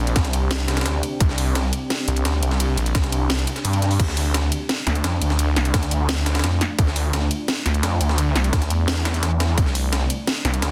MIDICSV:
0, 0, Header, 1, 4, 480
1, 0, Start_track
1, 0, Key_signature, -1, "minor"
1, 0, Tempo, 348837
1, 1658, Time_signature, 4, 2, 24, 8
1, 14742, End_track
2, 0, Start_track
2, 0, Title_t, "Ambient pad"
2, 0, Program_c, 0, 92
2, 0, Note_on_c, 0, 60, 78
2, 0, Note_on_c, 0, 62, 71
2, 0, Note_on_c, 0, 67, 73
2, 0, Note_on_c, 0, 74, 85
2, 5443, Note_off_c, 0, 60, 0
2, 5443, Note_off_c, 0, 67, 0
2, 5444, Note_off_c, 0, 74, 0
2, 5498, Note_on_c, 0, 57, 78
2, 5498, Note_on_c, 0, 65, 71
2, 5498, Note_on_c, 0, 74, 88
2, 13123, Note_off_c, 0, 57, 0
2, 13123, Note_off_c, 0, 62, 0
2, 13123, Note_off_c, 0, 65, 0
2, 13178, Note_on_c, 0, 60, 79
2, 13178, Note_on_c, 0, 62, 71
2, 13178, Note_on_c, 0, 67, 71
2, 14742, Note_off_c, 0, 60, 0
2, 14742, Note_off_c, 0, 62, 0
2, 14742, Note_off_c, 0, 67, 0
2, 14742, Note_off_c, 0, 74, 0
2, 14742, End_track
3, 0, Start_track
3, 0, Title_t, "Detuned saw bass"
3, 0, Program_c, 1, 39
3, 0, Note_on_c, 1, 34, 98
3, 199, Note_off_c, 1, 34, 0
3, 218, Note_on_c, 1, 36, 98
3, 439, Note_off_c, 1, 36, 0
3, 458, Note_on_c, 1, 36, 100
3, 919, Note_off_c, 1, 36, 0
3, 939, Note_on_c, 1, 36, 95
3, 1160, Note_off_c, 1, 36, 0
3, 1178, Note_on_c, 1, 38, 96
3, 1399, Note_off_c, 1, 38, 0
3, 1658, Note_on_c, 1, 36, 97
3, 2359, Note_off_c, 1, 36, 0
3, 2859, Note_on_c, 1, 36, 92
3, 3079, Note_off_c, 1, 36, 0
3, 3099, Note_on_c, 1, 38, 96
3, 3319, Note_off_c, 1, 38, 0
3, 3338, Note_on_c, 1, 36, 95
3, 3799, Note_off_c, 1, 36, 0
3, 3818, Note_on_c, 1, 34, 99
3, 4039, Note_off_c, 1, 34, 0
3, 4059, Note_on_c, 1, 36, 95
3, 4279, Note_off_c, 1, 36, 0
3, 4298, Note_on_c, 1, 36, 96
3, 4759, Note_off_c, 1, 36, 0
3, 5018, Note_on_c, 1, 43, 93
3, 5479, Note_off_c, 1, 43, 0
3, 5498, Note_on_c, 1, 38, 100
3, 6199, Note_off_c, 1, 38, 0
3, 6697, Note_on_c, 1, 38, 92
3, 6918, Note_off_c, 1, 38, 0
3, 6937, Note_on_c, 1, 41, 96
3, 7159, Note_off_c, 1, 41, 0
3, 7178, Note_on_c, 1, 38, 98
3, 7639, Note_off_c, 1, 38, 0
3, 7657, Note_on_c, 1, 36, 97
3, 7879, Note_off_c, 1, 36, 0
3, 7896, Note_on_c, 1, 38, 96
3, 8118, Note_off_c, 1, 38, 0
3, 8138, Note_on_c, 1, 38, 96
3, 8599, Note_off_c, 1, 38, 0
3, 8617, Note_on_c, 1, 38, 92
3, 8839, Note_off_c, 1, 38, 0
3, 8858, Note_on_c, 1, 41, 99
3, 9079, Note_off_c, 1, 41, 0
3, 9337, Note_on_c, 1, 38, 99
3, 10039, Note_off_c, 1, 38, 0
3, 10538, Note_on_c, 1, 38, 94
3, 10759, Note_off_c, 1, 38, 0
3, 10778, Note_on_c, 1, 41, 98
3, 10999, Note_off_c, 1, 41, 0
3, 11018, Note_on_c, 1, 38, 96
3, 11479, Note_off_c, 1, 38, 0
3, 11498, Note_on_c, 1, 36, 100
3, 11719, Note_off_c, 1, 36, 0
3, 11736, Note_on_c, 1, 38, 96
3, 11958, Note_off_c, 1, 38, 0
3, 11978, Note_on_c, 1, 40, 97
3, 13159, Note_off_c, 1, 40, 0
3, 13177, Note_on_c, 1, 36, 96
3, 13878, Note_off_c, 1, 36, 0
3, 14377, Note_on_c, 1, 36, 94
3, 14598, Note_off_c, 1, 36, 0
3, 14618, Note_on_c, 1, 38, 95
3, 14742, Note_off_c, 1, 38, 0
3, 14742, End_track
4, 0, Start_track
4, 0, Title_t, "Drums"
4, 98, Note_on_c, 9, 42, 36
4, 98, Note_on_c, 9, 51, 44
4, 218, Note_off_c, 9, 42, 0
4, 218, Note_off_c, 9, 51, 0
4, 218, Note_on_c, 9, 36, 98
4, 218, Note_on_c, 9, 38, 116
4, 218, Note_on_c, 9, 42, 91
4, 218, Note_on_c, 9, 51, 88
4, 337, Note_off_c, 9, 38, 0
4, 337, Note_on_c, 9, 38, 53
4, 339, Note_off_c, 9, 42, 0
4, 339, Note_on_c, 9, 42, 35
4, 355, Note_off_c, 9, 36, 0
4, 355, Note_off_c, 9, 51, 0
4, 458, Note_off_c, 9, 42, 0
4, 458, Note_on_c, 9, 42, 63
4, 458, Note_on_c, 9, 51, 66
4, 475, Note_off_c, 9, 38, 0
4, 595, Note_off_c, 9, 51, 0
4, 596, Note_off_c, 9, 42, 0
4, 697, Note_on_c, 9, 51, 86
4, 698, Note_on_c, 9, 38, 111
4, 698, Note_on_c, 9, 42, 88
4, 835, Note_off_c, 9, 51, 0
4, 836, Note_off_c, 9, 38, 0
4, 836, Note_off_c, 9, 42, 0
4, 938, Note_on_c, 9, 38, 100
4, 938, Note_on_c, 9, 42, 62
4, 938, Note_on_c, 9, 51, 78
4, 1058, Note_off_c, 9, 38, 0
4, 1058, Note_off_c, 9, 51, 0
4, 1058, Note_on_c, 9, 38, 87
4, 1058, Note_on_c, 9, 51, 67
4, 1059, Note_off_c, 9, 42, 0
4, 1059, Note_on_c, 9, 42, 35
4, 1118, Note_off_c, 9, 38, 0
4, 1118, Note_off_c, 9, 51, 0
4, 1118, Note_on_c, 9, 38, 87
4, 1118, Note_on_c, 9, 51, 66
4, 1178, Note_off_c, 9, 38, 0
4, 1178, Note_off_c, 9, 42, 0
4, 1178, Note_off_c, 9, 51, 0
4, 1178, Note_on_c, 9, 38, 114
4, 1178, Note_on_c, 9, 42, 90
4, 1178, Note_on_c, 9, 51, 81
4, 1315, Note_off_c, 9, 38, 0
4, 1315, Note_off_c, 9, 51, 0
4, 1316, Note_off_c, 9, 42, 0
4, 1418, Note_on_c, 9, 42, 65
4, 1419, Note_on_c, 9, 51, 67
4, 1556, Note_off_c, 9, 42, 0
4, 1556, Note_off_c, 9, 51, 0
4, 1658, Note_on_c, 9, 36, 110
4, 1658, Note_on_c, 9, 42, 90
4, 1658, Note_on_c, 9, 51, 88
4, 1779, Note_on_c, 9, 38, 41
4, 1795, Note_off_c, 9, 42, 0
4, 1796, Note_off_c, 9, 36, 0
4, 1796, Note_off_c, 9, 51, 0
4, 1898, Note_on_c, 9, 42, 66
4, 1900, Note_on_c, 9, 46, 80
4, 1917, Note_off_c, 9, 38, 0
4, 2035, Note_off_c, 9, 42, 0
4, 2037, Note_off_c, 9, 46, 0
4, 2138, Note_on_c, 9, 42, 94
4, 2139, Note_on_c, 9, 38, 118
4, 2139, Note_on_c, 9, 51, 91
4, 2275, Note_off_c, 9, 42, 0
4, 2277, Note_off_c, 9, 38, 0
4, 2277, Note_off_c, 9, 51, 0
4, 2378, Note_on_c, 9, 42, 68
4, 2379, Note_on_c, 9, 51, 67
4, 2515, Note_off_c, 9, 42, 0
4, 2516, Note_off_c, 9, 51, 0
4, 2619, Note_on_c, 9, 38, 110
4, 2619, Note_on_c, 9, 42, 90
4, 2619, Note_on_c, 9, 51, 87
4, 2756, Note_off_c, 9, 38, 0
4, 2756, Note_off_c, 9, 42, 0
4, 2757, Note_off_c, 9, 51, 0
4, 2858, Note_on_c, 9, 42, 67
4, 2858, Note_on_c, 9, 51, 69
4, 2979, Note_off_c, 9, 42, 0
4, 2979, Note_on_c, 9, 42, 37
4, 2996, Note_off_c, 9, 51, 0
4, 3097, Note_on_c, 9, 38, 110
4, 3097, Note_on_c, 9, 51, 86
4, 3099, Note_off_c, 9, 42, 0
4, 3099, Note_on_c, 9, 42, 94
4, 3235, Note_off_c, 9, 38, 0
4, 3235, Note_off_c, 9, 51, 0
4, 3236, Note_off_c, 9, 42, 0
4, 3338, Note_on_c, 9, 51, 69
4, 3339, Note_on_c, 9, 42, 70
4, 3458, Note_on_c, 9, 38, 50
4, 3476, Note_off_c, 9, 42, 0
4, 3476, Note_off_c, 9, 51, 0
4, 3578, Note_on_c, 9, 51, 89
4, 3579, Note_on_c, 9, 42, 94
4, 3596, Note_off_c, 9, 38, 0
4, 3716, Note_off_c, 9, 42, 0
4, 3716, Note_off_c, 9, 51, 0
4, 3818, Note_on_c, 9, 51, 68
4, 3819, Note_on_c, 9, 42, 68
4, 3937, Note_off_c, 9, 51, 0
4, 3937, Note_on_c, 9, 51, 44
4, 3939, Note_off_c, 9, 42, 0
4, 3939, Note_on_c, 9, 42, 39
4, 4057, Note_off_c, 9, 51, 0
4, 4057, Note_on_c, 9, 38, 121
4, 4057, Note_on_c, 9, 51, 89
4, 4058, Note_off_c, 9, 42, 0
4, 4058, Note_on_c, 9, 42, 95
4, 4059, Note_on_c, 9, 36, 96
4, 4177, Note_off_c, 9, 38, 0
4, 4177, Note_on_c, 9, 38, 53
4, 4179, Note_off_c, 9, 42, 0
4, 4179, Note_on_c, 9, 42, 39
4, 4195, Note_off_c, 9, 51, 0
4, 4196, Note_off_c, 9, 36, 0
4, 4298, Note_on_c, 9, 51, 66
4, 4300, Note_off_c, 9, 42, 0
4, 4300, Note_on_c, 9, 42, 68
4, 4315, Note_off_c, 9, 38, 0
4, 4435, Note_off_c, 9, 51, 0
4, 4438, Note_off_c, 9, 42, 0
4, 4538, Note_on_c, 9, 38, 100
4, 4538, Note_on_c, 9, 51, 76
4, 4539, Note_off_c, 9, 38, 0
4, 4539, Note_on_c, 9, 38, 112
4, 4539, Note_on_c, 9, 42, 95
4, 4660, Note_off_c, 9, 42, 0
4, 4660, Note_on_c, 9, 42, 38
4, 4675, Note_off_c, 9, 51, 0
4, 4676, Note_off_c, 9, 38, 0
4, 4777, Note_on_c, 9, 51, 80
4, 4780, Note_off_c, 9, 42, 0
4, 4780, Note_on_c, 9, 42, 68
4, 4897, Note_on_c, 9, 38, 36
4, 4900, Note_off_c, 9, 42, 0
4, 4900, Note_on_c, 9, 42, 38
4, 4915, Note_off_c, 9, 51, 0
4, 5018, Note_on_c, 9, 46, 68
4, 5020, Note_off_c, 9, 42, 0
4, 5020, Note_on_c, 9, 42, 98
4, 5035, Note_off_c, 9, 38, 0
4, 5137, Note_on_c, 9, 51, 78
4, 5155, Note_off_c, 9, 46, 0
4, 5157, Note_off_c, 9, 42, 0
4, 5258, Note_on_c, 9, 38, 38
4, 5259, Note_on_c, 9, 42, 68
4, 5275, Note_off_c, 9, 51, 0
4, 5377, Note_on_c, 9, 46, 69
4, 5395, Note_off_c, 9, 38, 0
4, 5397, Note_off_c, 9, 42, 0
4, 5498, Note_on_c, 9, 36, 119
4, 5498, Note_on_c, 9, 51, 91
4, 5499, Note_on_c, 9, 42, 91
4, 5499, Note_on_c, 9, 49, 71
4, 5515, Note_off_c, 9, 46, 0
4, 5618, Note_on_c, 9, 38, 41
4, 5635, Note_off_c, 9, 36, 0
4, 5636, Note_off_c, 9, 51, 0
4, 5637, Note_off_c, 9, 42, 0
4, 5637, Note_off_c, 9, 49, 0
4, 5737, Note_on_c, 9, 46, 81
4, 5739, Note_on_c, 9, 42, 66
4, 5755, Note_off_c, 9, 38, 0
4, 5875, Note_off_c, 9, 46, 0
4, 5876, Note_off_c, 9, 42, 0
4, 5977, Note_on_c, 9, 38, 115
4, 5977, Note_on_c, 9, 51, 89
4, 5978, Note_on_c, 9, 42, 96
4, 6114, Note_off_c, 9, 38, 0
4, 6114, Note_off_c, 9, 51, 0
4, 6116, Note_off_c, 9, 42, 0
4, 6217, Note_on_c, 9, 51, 67
4, 6218, Note_on_c, 9, 42, 67
4, 6355, Note_off_c, 9, 42, 0
4, 6355, Note_off_c, 9, 51, 0
4, 6457, Note_on_c, 9, 38, 116
4, 6457, Note_on_c, 9, 42, 94
4, 6457, Note_on_c, 9, 51, 86
4, 6594, Note_off_c, 9, 38, 0
4, 6594, Note_off_c, 9, 42, 0
4, 6595, Note_off_c, 9, 51, 0
4, 6697, Note_on_c, 9, 40, 54
4, 6697, Note_on_c, 9, 42, 65
4, 6697, Note_on_c, 9, 51, 69
4, 6817, Note_off_c, 9, 42, 0
4, 6817, Note_on_c, 9, 42, 37
4, 6834, Note_off_c, 9, 51, 0
4, 6835, Note_off_c, 9, 40, 0
4, 6936, Note_off_c, 9, 42, 0
4, 6936, Note_on_c, 9, 42, 94
4, 6937, Note_on_c, 9, 38, 112
4, 6937, Note_on_c, 9, 51, 84
4, 7074, Note_off_c, 9, 38, 0
4, 7074, Note_off_c, 9, 42, 0
4, 7074, Note_off_c, 9, 51, 0
4, 7176, Note_on_c, 9, 42, 70
4, 7176, Note_on_c, 9, 51, 70
4, 7297, Note_on_c, 9, 38, 52
4, 7314, Note_off_c, 9, 42, 0
4, 7314, Note_off_c, 9, 51, 0
4, 7416, Note_on_c, 9, 51, 89
4, 7417, Note_on_c, 9, 42, 92
4, 7434, Note_off_c, 9, 38, 0
4, 7554, Note_off_c, 9, 42, 0
4, 7554, Note_off_c, 9, 51, 0
4, 7657, Note_on_c, 9, 40, 57
4, 7657, Note_on_c, 9, 42, 65
4, 7657, Note_on_c, 9, 51, 68
4, 7777, Note_off_c, 9, 42, 0
4, 7777, Note_off_c, 9, 51, 0
4, 7777, Note_on_c, 9, 42, 38
4, 7777, Note_on_c, 9, 51, 44
4, 7794, Note_off_c, 9, 40, 0
4, 7896, Note_off_c, 9, 51, 0
4, 7896, Note_on_c, 9, 38, 117
4, 7896, Note_on_c, 9, 51, 90
4, 7897, Note_off_c, 9, 42, 0
4, 7897, Note_on_c, 9, 36, 105
4, 7897, Note_on_c, 9, 42, 92
4, 8016, Note_off_c, 9, 38, 0
4, 8016, Note_on_c, 9, 38, 53
4, 8018, Note_off_c, 9, 42, 0
4, 8018, Note_on_c, 9, 42, 36
4, 8034, Note_off_c, 9, 36, 0
4, 8034, Note_off_c, 9, 51, 0
4, 8135, Note_on_c, 9, 51, 68
4, 8138, Note_off_c, 9, 42, 0
4, 8138, Note_on_c, 9, 42, 65
4, 8154, Note_off_c, 9, 38, 0
4, 8273, Note_off_c, 9, 51, 0
4, 8275, Note_off_c, 9, 42, 0
4, 8376, Note_on_c, 9, 51, 88
4, 8378, Note_on_c, 9, 38, 123
4, 8378, Note_on_c, 9, 42, 92
4, 8513, Note_off_c, 9, 51, 0
4, 8516, Note_off_c, 9, 38, 0
4, 8516, Note_off_c, 9, 42, 0
4, 8616, Note_on_c, 9, 38, 103
4, 8616, Note_on_c, 9, 51, 80
4, 8618, Note_on_c, 9, 42, 65
4, 8737, Note_off_c, 9, 38, 0
4, 8737, Note_off_c, 9, 42, 0
4, 8737, Note_off_c, 9, 51, 0
4, 8737, Note_on_c, 9, 38, 88
4, 8737, Note_on_c, 9, 42, 37
4, 8737, Note_on_c, 9, 51, 67
4, 8798, Note_off_c, 9, 38, 0
4, 8798, Note_off_c, 9, 51, 0
4, 8798, Note_on_c, 9, 38, 89
4, 8798, Note_on_c, 9, 51, 66
4, 8857, Note_off_c, 9, 38, 0
4, 8857, Note_off_c, 9, 51, 0
4, 8857, Note_on_c, 9, 38, 113
4, 8857, Note_on_c, 9, 51, 83
4, 8858, Note_off_c, 9, 42, 0
4, 8858, Note_on_c, 9, 40, 35
4, 8858, Note_on_c, 9, 42, 93
4, 8995, Note_off_c, 9, 38, 0
4, 8995, Note_off_c, 9, 40, 0
4, 8995, Note_off_c, 9, 42, 0
4, 8995, Note_off_c, 9, 51, 0
4, 9097, Note_on_c, 9, 40, 60
4, 9097, Note_on_c, 9, 42, 68
4, 9097, Note_on_c, 9, 51, 69
4, 9234, Note_off_c, 9, 51, 0
4, 9235, Note_off_c, 9, 40, 0
4, 9235, Note_off_c, 9, 42, 0
4, 9337, Note_on_c, 9, 36, 125
4, 9337, Note_on_c, 9, 42, 88
4, 9337, Note_on_c, 9, 51, 89
4, 9457, Note_on_c, 9, 38, 41
4, 9474, Note_off_c, 9, 42, 0
4, 9475, Note_off_c, 9, 36, 0
4, 9475, Note_off_c, 9, 51, 0
4, 9576, Note_on_c, 9, 42, 62
4, 9578, Note_on_c, 9, 46, 78
4, 9595, Note_off_c, 9, 38, 0
4, 9714, Note_off_c, 9, 42, 0
4, 9715, Note_off_c, 9, 46, 0
4, 9816, Note_on_c, 9, 42, 91
4, 9817, Note_on_c, 9, 38, 117
4, 9817, Note_on_c, 9, 51, 89
4, 9954, Note_off_c, 9, 42, 0
4, 9955, Note_off_c, 9, 38, 0
4, 9955, Note_off_c, 9, 51, 0
4, 10057, Note_on_c, 9, 42, 61
4, 10058, Note_on_c, 9, 51, 66
4, 10194, Note_off_c, 9, 42, 0
4, 10195, Note_off_c, 9, 51, 0
4, 10296, Note_on_c, 9, 38, 123
4, 10296, Note_on_c, 9, 42, 91
4, 10297, Note_on_c, 9, 51, 87
4, 10433, Note_off_c, 9, 38, 0
4, 10433, Note_off_c, 9, 42, 0
4, 10434, Note_off_c, 9, 51, 0
4, 10536, Note_on_c, 9, 40, 55
4, 10536, Note_on_c, 9, 42, 63
4, 10537, Note_on_c, 9, 51, 68
4, 10656, Note_off_c, 9, 42, 0
4, 10656, Note_on_c, 9, 42, 34
4, 10674, Note_off_c, 9, 40, 0
4, 10675, Note_off_c, 9, 51, 0
4, 10776, Note_off_c, 9, 42, 0
4, 10776, Note_on_c, 9, 42, 90
4, 10777, Note_on_c, 9, 38, 114
4, 10777, Note_on_c, 9, 51, 84
4, 10914, Note_off_c, 9, 42, 0
4, 10915, Note_off_c, 9, 38, 0
4, 10915, Note_off_c, 9, 51, 0
4, 11018, Note_on_c, 9, 42, 65
4, 11018, Note_on_c, 9, 51, 69
4, 11137, Note_on_c, 9, 38, 53
4, 11155, Note_off_c, 9, 42, 0
4, 11156, Note_off_c, 9, 51, 0
4, 11256, Note_on_c, 9, 51, 89
4, 11257, Note_on_c, 9, 42, 86
4, 11275, Note_off_c, 9, 38, 0
4, 11394, Note_off_c, 9, 51, 0
4, 11395, Note_off_c, 9, 42, 0
4, 11497, Note_on_c, 9, 51, 68
4, 11498, Note_on_c, 9, 40, 54
4, 11498, Note_on_c, 9, 42, 61
4, 11617, Note_off_c, 9, 51, 0
4, 11617, Note_on_c, 9, 51, 43
4, 11618, Note_off_c, 9, 42, 0
4, 11618, Note_on_c, 9, 42, 35
4, 11636, Note_off_c, 9, 40, 0
4, 11736, Note_off_c, 9, 51, 0
4, 11736, Note_on_c, 9, 38, 117
4, 11736, Note_on_c, 9, 51, 88
4, 11737, Note_on_c, 9, 36, 105
4, 11738, Note_off_c, 9, 42, 0
4, 11738, Note_on_c, 9, 42, 88
4, 11857, Note_off_c, 9, 38, 0
4, 11857, Note_on_c, 9, 38, 53
4, 11858, Note_off_c, 9, 42, 0
4, 11858, Note_on_c, 9, 42, 36
4, 11874, Note_off_c, 9, 36, 0
4, 11874, Note_off_c, 9, 51, 0
4, 11977, Note_on_c, 9, 51, 69
4, 11978, Note_off_c, 9, 42, 0
4, 11978, Note_on_c, 9, 42, 62
4, 11995, Note_off_c, 9, 38, 0
4, 12114, Note_off_c, 9, 51, 0
4, 12115, Note_off_c, 9, 42, 0
4, 12217, Note_on_c, 9, 38, 122
4, 12217, Note_on_c, 9, 42, 87
4, 12217, Note_on_c, 9, 51, 85
4, 12354, Note_off_c, 9, 38, 0
4, 12354, Note_off_c, 9, 42, 0
4, 12354, Note_off_c, 9, 51, 0
4, 12457, Note_on_c, 9, 38, 105
4, 12457, Note_on_c, 9, 51, 81
4, 12458, Note_on_c, 9, 40, 45
4, 12458, Note_on_c, 9, 42, 61
4, 12577, Note_off_c, 9, 38, 0
4, 12577, Note_on_c, 9, 38, 38
4, 12578, Note_off_c, 9, 42, 0
4, 12578, Note_on_c, 9, 42, 35
4, 12595, Note_off_c, 9, 40, 0
4, 12595, Note_off_c, 9, 51, 0
4, 12697, Note_off_c, 9, 38, 0
4, 12697, Note_on_c, 9, 38, 101
4, 12697, Note_on_c, 9, 51, 77
4, 12698, Note_off_c, 9, 42, 0
4, 12698, Note_on_c, 9, 42, 91
4, 12835, Note_off_c, 9, 38, 0
4, 12835, Note_off_c, 9, 51, 0
4, 12836, Note_off_c, 9, 42, 0
4, 12937, Note_on_c, 9, 42, 61
4, 12938, Note_on_c, 9, 38, 104
4, 12938, Note_on_c, 9, 51, 81
4, 13075, Note_off_c, 9, 38, 0
4, 13075, Note_off_c, 9, 42, 0
4, 13075, Note_off_c, 9, 51, 0
4, 13177, Note_on_c, 9, 36, 123
4, 13178, Note_on_c, 9, 42, 88
4, 13178, Note_on_c, 9, 51, 90
4, 13297, Note_on_c, 9, 38, 40
4, 13314, Note_off_c, 9, 36, 0
4, 13315, Note_off_c, 9, 42, 0
4, 13316, Note_off_c, 9, 51, 0
4, 13418, Note_on_c, 9, 46, 80
4, 13419, Note_on_c, 9, 42, 63
4, 13435, Note_off_c, 9, 38, 0
4, 13555, Note_off_c, 9, 46, 0
4, 13556, Note_off_c, 9, 42, 0
4, 13657, Note_on_c, 9, 38, 117
4, 13657, Note_on_c, 9, 51, 87
4, 13658, Note_on_c, 9, 42, 88
4, 13795, Note_off_c, 9, 38, 0
4, 13795, Note_off_c, 9, 51, 0
4, 13796, Note_off_c, 9, 42, 0
4, 13897, Note_on_c, 9, 51, 68
4, 13898, Note_on_c, 9, 42, 64
4, 14035, Note_off_c, 9, 51, 0
4, 14036, Note_off_c, 9, 42, 0
4, 14137, Note_on_c, 9, 38, 119
4, 14137, Note_on_c, 9, 42, 87
4, 14138, Note_on_c, 9, 51, 89
4, 14275, Note_off_c, 9, 38, 0
4, 14275, Note_off_c, 9, 42, 0
4, 14275, Note_off_c, 9, 51, 0
4, 14377, Note_on_c, 9, 51, 69
4, 14378, Note_on_c, 9, 40, 52
4, 14378, Note_on_c, 9, 42, 62
4, 14498, Note_off_c, 9, 42, 0
4, 14498, Note_on_c, 9, 42, 36
4, 14515, Note_off_c, 9, 40, 0
4, 14515, Note_off_c, 9, 51, 0
4, 14617, Note_off_c, 9, 42, 0
4, 14617, Note_on_c, 9, 38, 114
4, 14617, Note_on_c, 9, 42, 89
4, 14617, Note_on_c, 9, 51, 87
4, 14742, Note_off_c, 9, 38, 0
4, 14742, Note_off_c, 9, 42, 0
4, 14742, Note_off_c, 9, 51, 0
4, 14742, End_track
0, 0, End_of_file